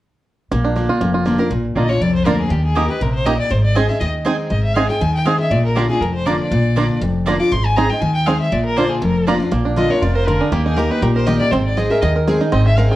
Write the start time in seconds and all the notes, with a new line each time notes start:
0.51 A#1 A#2 A#3
0.64 D4
0.75 D3 A#3 D4 F4
0.89 F4
1.01 F1 F2 A#3
1.14 F4
1.26 D3 A#3 D4 F4
1.38 D4 F4 A#4
1.51 A#1 A#2
1.76 A#1 D3 A#3 D4 F4 D5 D#5 A#5
1.89 D4 F4 C#5
2.01 C2 F2 D5
2.15 C5
2.25 D2 D3 A#3 D4 F4 A#4 D5 A#5
2.40 G#4
2.50 D#2 D#3 G4
2.65 G#4
2.75 D#3 A#3 D#4 G4 A#4 D#5 A#5
2.88 D#4 G4 B4
3.01 A#1 C3 A#4
3.15 C5
3.26 A#2 A#3 D#4 G4 D#5 A#5
3.39 D5
3.50 G#1 G#2 C5
3.64 D5
3.75 G#3 C4 D#4 G#4 D#5 G#5
3.89 D#4 G#4 E5
4.00 D#2 D#3 D#5
4.25 G#3 C4 D#4 G#4 D#5 G#5
4.50 G#1 G#2 D#5
4.63 E5
4.75 G#3 C4 D#4 G#4 D#5 F5 G#5
4.89 D#4 G#4 G5
5.01 D#2 D#3 G#5
5.14 G5
5.25 G#3 C4 D#4 G#4 D#5 F5 G#5
5.39 D#4 G#4 E5
5.51 A#1 A#2 D5
5.65 A#4
5.76 D3 A#3 D4 F4 G4 D5 A#5
5.89 D4 F4 G#4
6.01 F1 F2 A#4
6.15 C5
6.25 D3 A#3 D4 F4 D5 A#5
6.40 D5
6.51 A#1 A#2
6.76 D3 A#3 D4 F4 D5 A#5
7.01 F1 F2
7.26 D3 A#3 D4 F4 D5 A#5
7.40 D4 F4 D6
7.52 G#1 G#2 C6
7.65 G#5
7.77 G#3 C4 D#4 G#4 D#5 G#5 A#5
7.90 D#4 G#4 G5
8.01 D#2 D#3 G#5
8.15 G5
8.26 G#3 C4 D#4 G#4 D#5 F5 G#5
8.40 E5
8.52 A#1 A#2 D5
8.65 A#4
8.76 D3 A#3 D4 F4 C5 D5 A#5
8.89 G#4
9.02 F1 F2 A#4
9.27 D3 A#3 D4 F4 D5 A#5
9.40 D4 F4
9.51 A#1 A#2 A#3
9.65 D4
9.76 D3 A#3 D4 F4 D#5
9.90 D4 F4 A#4 C#5
10.02 F1 C3 F4 D5
10.15 A#4 C5
10.27 D3 F4 A#4
10.40 D4 G#4
10.52 D#2 D#3 A#3 G4
10.65 D#4 G#4
10.76 D#3 A#3 D#4 G4 A#4
10.90 D#4 B4
11.02 A#1 A#2 G4 A#4
11.15 A#4 C5
11.27 D#3 A#3 D#4 G4 D#5
11.39 A#3 D#4 G4 D5
11.51 G#1 G#2 C4 C5
11.65 D5
11.77 G#3 C4 D#4 G#4 D#5
11.90 D#4 G#4 A#4 E5
12.01 D#2 D#3 G#4 D#5
12.16 A#4
12.27 G#3 C4 D#4 G#4
12.41 D#4 G#4
12.52 G#1 G#2 C4 D#5
12.66 G#4 E5
12.77 G#3 C4 D#4 G#4 A#4 F5
12.90 G#4 G5